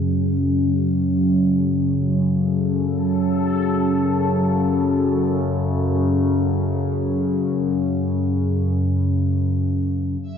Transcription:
Already playing: synth drone F#2 C#3, analog synth pad F#3 C#4 G#4
2.24 analog synth pad A4
10.24 synth drone F#2 C#3

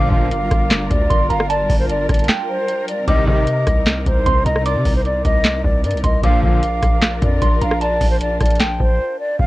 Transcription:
Already playing: 808-style bass G1, analog polysynth A#2 D3 F3, string section G3 D4 F4 A#4, synth bell D6
0.12 808-style bass G1, flute F5, kick
0.31 closed hi-hat
0.51 808-style bass G1, kick, cross-stick, closed hi-hat
0.71 snare, clap, closed hi-hat
0.90 808-style bass D2, flute D5, kick, closed hi-hat
1.10 808-style bass G1, synth bell C6, kick, closed hi-hat
1.30 808-style bass G1, flute F5, synth bell A#5, closed hi-hat
1.40 cross-stick
1.50 flute D5, synth bell A5, closed hi-hat
1.69 808-style bass G1, kick, open hi-hat
1.79 flute C5
1.89 flute D5, closed hi-hat
2.09 808-style bass G1, flute D5, kick, cross-stick, closed hi-hat
2.14 closed hi-hat
2.19 closed hi-hat
2.24 closed hi-hat
2.29 synth bell G5, snare, clap, closed hi-hat
2.49 flute C5
2.68 closed hi-hat
2.88 flute D5, closed hi-hat
3.08 808-style bass C2, string section C3 C4 D#4, analog polysynth C3 D#3 G3, flute D#5, synth bell D6, kick, closed hi-hat
3.27 808-style bass C3, flute D#5, kick
3.47 closed hi-hat
3.67 808-style bass C2, kick, cross-stick, closed hi-hat
3.87 snare, clap, closed hi-hat
4.06 808-style bass C2, flute C5, kick, closed hi-hat
4.26 808-style bass C2, synth bell C6, kick, closed hi-hat
4.46 808-style bass C2, flute D#5, synth bell A#5, closed hi-hat
4.56 cross-stick
4.65 flute D5, synth bell D6, closed hi-hat
4.75 808-style bass C3
4.85 808-style bass C2, kick, open hi-hat
4.96 flute C5
5.05 flute D5, closed hi-hat
5.25 808-style bass C2, flute D#5, kick, closed hi-hat
5.45 snare, clap, closed hi-hat
5.64 808-style bass C2, flute D5, kick
5.84 808-style bass G2, flute D5, closed hi-hat
5.91 808-style bass C2, closed hi-hat
5.97 closed hi-hat
6.04 808-style bass C2, flute D#5, synth bell C6, kick, closed hi-hat
6.23 808-style bass A#1, analog polysynth A#2 D3 F3, string section D4 F4 A#4, flute F5, synth bell D6, kick, closed hi-hat
6.43 808-style bass A#1, flute F5, kick
6.63 closed hi-hat
6.83 808-style bass A#1, kick, cross-stick, closed hi-hat
7.02 snare, clap, closed hi-hat
7.22 808-style bass F2, flute D5, kick, closed hi-hat
7.42 808-style bass A#1, synth bell C6, kick, closed hi-hat
7.62 808-style bass A#1, flute F5, synth bell A#5, closed hi-hat
7.71 cross-stick
7.81 flute D5, synth bell A5, closed hi-hat
8.01 808-style bass A#1, kick, open hi-hat
8.11 flute C5
8.21 flute D5, closed hi-hat
8.41 808-style bass A#1, flute D5, kick, cross-stick, closed hi-hat
8.46 closed hi-hat
8.50 closed hi-hat
8.55 closed hi-hat
8.60 synth bell G5, snare, clap, closed hi-hat
8.80 808-style bass A#1, flute C5, kick
9.19 flute D5
9.39 808-style bass G1, flute F5, kick

